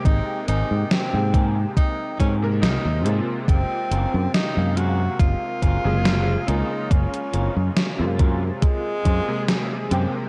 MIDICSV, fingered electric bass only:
0, 0, Header, 1, 2, 480
1, 0, Start_track
1, 0, Tempo, 857143
1, 31, Time_signature, 4, 2, 24, 8
1, 5762, End_track
2, 0, Start_track
2, 0, Title_t, "Fingered electric bass"
2, 0, Program_c, 0, 33
2, 29, Note_on_c, 0, 32, 100
2, 107, Note_off_c, 0, 32, 0
2, 270, Note_on_c, 0, 32, 84
2, 348, Note_off_c, 0, 32, 0
2, 397, Note_on_c, 0, 44, 98
2, 466, Note_off_c, 0, 44, 0
2, 637, Note_on_c, 0, 44, 98
2, 919, Note_off_c, 0, 44, 0
2, 1229, Note_on_c, 0, 44, 91
2, 1469, Note_on_c, 0, 36, 104
2, 1477, Note_off_c, 0, 44, 0
2, 1547, Note_off_c, 0, 36, 0
2, 1596, Note_on_c, 0, 39, 98
2, 1709, Note_off_c, 0, 39, 0
2, 1709, Note_on_c, 0, 44, 83
2, 1787, Note_off_c, 0, 44, 0
2, 1950, Note_on_c, 0, 30, 101
2, 2027, Note_off_c, 0, 30, 0
2, 2190, Note_on_c, 0, 30, 84
2, 2267, Note_off_c, 0, 30, 0
2, 2319, Note_on_c, 0, 42, 107
2, 2386, Note_off_c, 0, 42, 0
2, 2559, Note_on_c, 0, 42, 100
2, 2840, Note_off_c, 0, 42, 0
2, 2910, Note_on_c, 0, 30, 91
2, 2987, Note_off_c, 0, 30, 0
2, 3149, Note_on_c, 0, 30, 85
2, 3227, Note_off_c, 0, 30, 0
2, 3277, Note_on_c, 0, 30, 100
2, 3559, Note_off_c, 0, 30, 0
2, 3629, Note_on_c, 0, 37, 84
2, 3707, Note_off_c, 0, 37, 0
2, 3869, Note_on_c, 0, 30, 101
2, 3947, Note_off_c, 0, 30, 0
2, 4109, Note_on_c, 0, 30, 87
2, 4187, Note_off_c, 0, 30, 0
2, 4237, Note_on_c, 0, 42, 101
2, 4306, Note_off_c, 0, 42, 0
2, 4477, Note_on_c, 0, 42, 97
2, 4759, Note_off_c, 0, 42, 0
2, 5069, Note_on_c, 0, 42, 93
2, 5147, Note_off_c, 0, 42, 0
2, 5550, Note_on_c, 0, 42, 83
2, 5627, Note_off_c, 0, 42, 0
2, 5762, End_track
0, 0, End_of_file